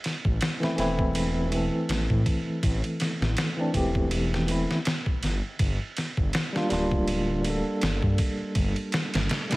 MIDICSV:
0, 0, Header, 1, 4, 480
1, 0, Start_track
1, 0, Tempo, 740741
1, 1706, Time_signature, 4, 2, 24, 8
1, 6199, End_track
2, 0, Start_track
2, 0, Title_t, "Tine electric piano"
2, 0, Program_c, 0, 4
2, 388, Note_on_c, 0, 52, 92
2, 398, Note_on_c, 0, 57, 85
2, 407, Note_on_c, 0, 60, 81
2, 416, Note_on_c, 0, 64, 97
2, 474, Note_off_c, 0, 52, 0
2, 479, Note_off_c, 0, 57, 0
2, 483, Note_off_c, 0, 60, 0
2, 488, Note_off_c, 0, 64, 0
2, 490, Note_on_c, 0, 52, 96
2, 499, Note_on_c, 0, 57, 87
2, 508, Note_on_c, 0, 60, 90
2, 518, Note_on_c, 0, 64, 108
2, 950, Note_off_c, 0, 52, 0
2, 957, Note_off_c, 0, 57, 0
2, 958, Note_on_c, 0, 52, 80
2, 962, Note_off_c, 0, 60, 0
2, 967, Note_off_c, 0, 64, 0
2, 975, Note_on_c, 0, 57, 68
2, 994, Note_on_c, 0, 60, 66
2, 1013, Note_on_c, 0, 69, 82
2, 2275, Note_off_c, 0, 52, 0
2, 2284, Note_off_c, 0, 57, 0
2, 2293, Note_off_c, 0, 60, 0
2, 2303, Note_off_c, 0, 69, 0
2, 2310, Note_on_c, 0, 52, 86
2, 2319, Note_on_c, 0, 57, 74
2, 2329, Note_on_c, 0, 60, 81
2, 2337, Note_on_c, 0, 62, 94
2, 2395, Note_off_c, 0, 52, 0
2, 2399, Note_off_c, 0, 57, 0
2, 2404, Note_off_c, 0, 60, 0
2, 2408, Note_off_c, 0, 62, 0
2, 2413, Note_on_c, 0, 52, 81
2, 2422, Note_on_c, 0, 57, 76
2, 2430, Note_on_c, 0, 60, 75
2, 2441, Note_on_c, 0, 67, 84
2, 2875, Note_off_c, 0, 52, 0
2, 2879, Note_off_c, 0, 57, 0
2, 2883, Note_off_c, 0, 60, 0
2, 2888, Note_off_c, 0, 67, 0
2, 2898, Note_on_c, 0, 52, 80
2, 2907, Note_on_c, 0, 57, 74
2, 2916, Note_on_c, 0, 60, 68
2, 2924, Note_on_c, 0, 64, 91
2, 3085, Note_off_c, 0, 52, 0
2, 3089, Note_off_c, 0, 57, 0
2, 3093, Note_off_c, 0, 60, 0
2, 3098, Note_off_c, 0, 64, 0
2, 4230, Note_on_c, 0, 55, 90
2, 4242, Note_on_c, 0, 58, 85
2, 4250, Note_on_c, 0, 62, 88
2, 4259, Note_on_c, 0, 65, 102
2, 4315, Note_off_c, 0, 55, 0
2, 4321, Note_off_c, 0, 58, 0
2, 4325, Note_off_c, 0, 62, 0
2, 4329, Note_off_c, 0, 65, 0
2, 4335, Note_on_c, 0, 55, 96
2, 4344, Note_on_c, 0, 58, 89
2, 4352, Note_on_c, 0, 62, 89
2, 4361, Note_on_c, 0, 65, 106
2, 4795, Note_off_c, 0, 55, 0
2, 4800, Note_off_c, 0, 58, 0
2, 4804, Note_off_c, 0, 62, 0
2, 4804, Note_on_c, 0, 55, 75
2, 4808, Note_off_c, 0, 65, 0
2, 4822, Note_on_c, 0, 58, 69
2, 4841, Note_on_c, 0, 62, 69
2, 4858, Note_on_c, 0, 69, 85
2, 6118, Note_off_c, 0, 55, 0
2, 6127, Note_off_c, 0, 58, 0
2, 6136, Note_off_c, 0, 62, 0
2, 6145, Note_off_c, 0, 69, 0
2, 6150, Note_on_c, 0, 55, 84
2, 6159, Note_on_c, 0, 58, 79
2, 6169, Note_on_c, 0, 62, 75
2, 6179, Note_on_c, 0, 64, 98
2, 6199, Note_off_c, 0, 55, 0
2, 6199, Note_off_c, 0, 58, 0
2, 6199, Note_off_c, 0, 62, 0
2, 6199, Note_off_c, 0, 64, 0
2, 6199, End_track
3, 0, Start_track
3, 0, Title_t, "Detuned saw bass"
3, 0, Program_c, 1, 39
3, 162, Note_on_c, 1, 33, 81
3, 253, Note_off_c, 1, 33, 0
3, 503, Note_on_c, 1, 28, 87
3, 1094, Note_off_c, 1, 28, 0
3, 1223, Note_on_c, 1, 33, 100
3, 1344, Note_off_c, 1, 33, 0
3, 1361, Note_on_c, 1, 45, 76
3, 1453, Note_off_c, 1, 45, 0
3, 1705, Note_on_c, 1, 33, 103
3, 1825, Note_off_c, 1, 33, 0
3, 2079, Note_on_c, 1, 33, 85
3, 2172, Note_off_c, 1, 33, 0
3, 2424, Note_on_c, 1, 28, 91
3, 3015, Note_off_c, 1, 28, 0
3, 3386, Note_on_c, 1, 31, 92
3, 3506, Note_off_c, 1, 31, 0
3, 3625, Note_on_c, 1, 31, 99
3, 3745, Note_off_c, 1, 31, 0
3, 4002, Note_on_c, 1, 31, 83
3, 4093, Note_off_c, 1, 31, 0
3, 4347, Note_on_c, 1, 26, 89
3, 4936, Note_off_c, 1, 26, 0
3, 5071, Note_on_c, 1, 31, 106
3, 5188, Note_off_c, 1, 31, 0
3, 5200, Note_on_c, 1, 43, 78
3, 5292, Note_off_c, 1, 43, 0
3, 5542, Note_on_c, 1, 31, 101
3, 5664, Note_off_c, 1, 31, 0
3, 5924, Note_on_c, 1, 31, 83
3, 6014, Note_off_c, 1, 31, 0
3, 6199, End_track
4, 0, Start_track
4, 0, Title_t, "Drums"
4, 26, Note_on_c, 9, 51, 72
4, 36, Note_on_c, 9, 38, 40
4, 91, Note_off_c, 9, 51, 0
4, 101, Note_off_c, 9, 38, 0
4, 161, Note_on_c, 9, 36, 102
4, 226, Note_off_c, 9, 36, 0
4, 264, Note_on_c, 9, 51, 78
4, 274, Note_on_c, 9, 38, 112
4, 329, Note_off_c, 9, 51, 0
4, 339, Note_off_c, 9, 38, 0
4, 410, Note_on_c, 9, 38, 53
4, 475, Note_off_c, 9, 38, 0
4, 506, Note_on_c, 9, 51, 68
4, 517, Note_on_c, 9, 38, 37
4, 571, Note_off_c, 9, 51, 0
4, 582, Note_off_c, 9, 38, 0
4, 640, Note_on_c, 9, 36, 92
4, 705, Note_off_c, 9, 36, 0
4, 745, Note_on_c, 9, 51, 87
4, 810, Note_off_c, 9, 51, 0
4, 984, Note_on_c, 9, 51, 68
4, 1049, Note_off_c, 9, 51, 0
4, 1225, Note_on_c, 9, 51, 86
4, 1236, Note_on_c, 9, 38, 112
4, 1290, Note_off_c, 9, 51, 0
4, 1300, Note_off_c, 9, 38, 0
4, 1361, Note_on_c, 9, 36, 83
4, 1425, Note_off_c, 9, 36, 0
4, 1464, Note_on_c, 9, 36, 100
4, 1465, Note_on_c, 9, 51, 67
4, 1529, Note_off_c, 9, 36, 0
4, 1530, Note_off_c, 9, 51, 0
4, 1704, Note_on_c, 9, 36, 109
4, 1704, Note_on_c, 9, 51, 83
4, 1769, Note_off_c, 9, 36, 0
4, 1769, Note_off_c, 9, 51, 0
4, 1840, Note_on_c, 9, 51, 44
4, 1905, Note_off_c, 9, 51, 0
4, 1943, Note_on_c, 9, 51, 68
4, 1954, Note_on_c, 9, 38, 52
4, 2008, Note_off_c, 9, 51, 0
4, 2019, Note_off_c, 9, 38, 0
4, 2089, Note_on_c, 9, 38, 57
4, 2153, Note_off_c, 9, 38, 0
4, 2181, Note_on_c, 9, 51, 90
4, 2192, Note_on_c, 9, 38, 106
4, 2246, Note_off_c, 9, 51, 0
4, 2257, Note_off_c, 9, 38, 0
4, 2423, Note_on_c, 9, 36, 94
4, 2424, Note_on_c, 9, 51, 68
4, 2488, Note_off_c, 9, 36, 0
4, 2489, Note_off_c, 9, 51, 0
4, 2560, Note_on_c, 9, 36, 93
4, 2625, Note_off_c, 9, 36, 0
4, 2663, Note_on_c, 9, 51, 90
4, 2728, Note_off_c, 9, 51, 0
4, 2813, Note_on_c, 9, 38, 55
4, 2878, Note_off_c, 9, 38, 0
4, 2904, Note_on_c, 9, 51, 69
4, 2969, Note_off_c, 9, 51, 0
4, 3050, Note_on_c, 9, 38, 50
4, 3115, Note_off_c, 9, 38, 0
4, 3145, Note_on_c, 9, 51, 86
4, 3155, Note_on_c, 9, 38, 112
4, 3210, Note_off_c, 9, 51, 0
4, 3220, Note_off_c, 9, 38, 0
4, 3280, Note_on_c, 9, 36, 87
4, 3345, Note_off_c, 9, 36, 0
4, 3386, Note_on_c, 9, 51, 73
4, 3397, Note_on_c, 9, 38, 42
4, 3451, Note_off_c, 9, 51, 0
4, 3461, Note_off_c, 9, 38, 0
4, 3624, Note_on_c, 9, 51, 92
4, 3625, Note_on_c, 9, 36, 116
4, 3688, Note_off_c, 9, 51, 0
4, 3689, Note_off_c, 9, 36, 0
4, 3866, Note_on_c, 9, 51, 67
4, 3876, Note_on_c, 9, 38, 46
4, 3931, Note_off_c, 9, 51, 0
4, 3941, Note_off_c, 9, 38, 0
4, 4000, Note_on_c, 9, 36, 95
4, 4065, Note_off_c, 9, 36, 0
4, 4103, Note_on_c, 9, 51, 89
4, 4114, Note_on_c, 9, 38, 115
4, 4168, Note_off_c, 9, 51, 0
4, 4178, Note_off_c, 9, 38, 0
4, 4250, Note_on_c, 9, 38, 53
4, 4315, Note_off_c, 9, 38, 0
4, 4344, Note_on_c, 9, 51, 68
4, 4354, Note_on_c, 9, 38, 37
4, 4408, Note_off_c, 9, 51, 0
4, 4419, Note_off_c, 9, 38, 0
4, 4481, Note_on_c, 9, 36, 88
4, 4545, Note_off_c, 9, 36, 0
4, 4585, Note_on_c, 9, 51, 81
4, 4649, Note_off_c, 9, 51, 0
4, 4824, Note_on_c, 9, 51, 66
4, 4889, Note_off_c, 9, 51, 0
4, 5064, Note_on_c, 9, 51, 81
4, 5074, Note_on_c, 9, 38, 111
4, 5129, Note_off_c, 9, 51, 0
4, 5139, Note_off_c, 9, 38, 0
4, 5200, Note_on_c, 9, 36, 86
4, 5265, Note_off_c, 9, 36, 0
4, 5302, Note_on_c, 9, 51, 71
4, 5304, Note_on_c, 9, 36, 98
4, 5367, Note_off_c, 9, 51, 0
4, 5369, Note_off_c, 9, 36, 0
4, 5541, Note_on_c, 9, 51, 88
4, 5544, Note_on_c, 9, 36, 114
4, 5606, Note_off_c, 9, 51, 0
4, 5609, Note_off_c, 9, 36, 0
4, 5677, Note_on_c, 9, 51, 45
4, 5742, Note_off_c, 9, 51, 0
4, 5781, Note_on_c, 9, 51, 77
4, 5792, Note_on_c, 9, 38, 106
4, 5846, Note_off_c, 9, 51, 0
4, 5856, Note_off_c, 9, 38, 0
4, 5920, Note_on_c, 9, 51, 81
4, 5930, Note_on_c, 9, 38, 108
4, 5985, Note_off_c, 9, 51, 0
4, 5995, Note_off_c, 9, 38, 0
4, 6022, Note_on_c, 9, 51, 77
4, 6033, Note_on_c, 9, 38, 98
4, 6087, Note_off_c, 9, 51, 0
4, 6097, Note_off_c, 9, 38, 0
4, 6160, Note_on_c, 9, 51, 80
4, 6171, Note_on_c, 9, 38, 104
4, 6199, Note_off_c, 9, 38, 0
4, 6199, Note_off_c, 9, 51, 0
4, 6199, End_track
0, 0, End_of_file